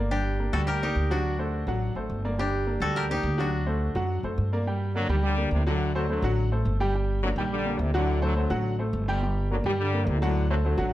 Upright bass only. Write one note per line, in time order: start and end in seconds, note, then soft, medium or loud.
0.00 0.48 G1 medium
0.53 0.93 D2 medium
0.95 1.62 D2 medium
1.67 1.94 A1 medium
1.95 2.09 A1 medium
2.10 2.76 G1 medium
2.80 3.21 D2 medium
3.23 3.89 D2 loud
3.95 4.22 F#2 medium
4.23 4.37 F#2 medium
4.38 5.04 G2 loud
5.09 5.49 D2 medium
5.51 6.17 D2 loud
6.22 6.62 A1 loud
6.65 7.31 G1 loud
7.36 7.76 A#1 loud
7.79 8.45 D2 medium
8.50 8.90 A1 loud
8.93 9.59 G1 loud
9.64 10.04 G2 medium
10.07 10.72 D2 loud
10.78 10.93 A1 loud